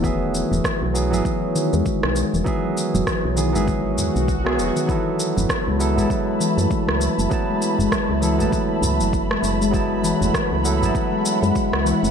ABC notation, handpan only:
X:1
M:4/4
L:1/16
Q:"Swing 16ths" 1/4=99
K:F#m
V:1 name="Handpan" clef=bass
^D, z2 E, z F, z F, E, z D, G, D, z2 E, | z F, z F, E, z ^D, G, D, z2 F, z B, z D, | E, z2 F, z G, z G, z2 E, A, E, z2 F, | z G, z G, F, z E, A, E, z2 F, z G, z G, |
F, z E, A, E, z2 F, z G, z G, F, z E, A, |]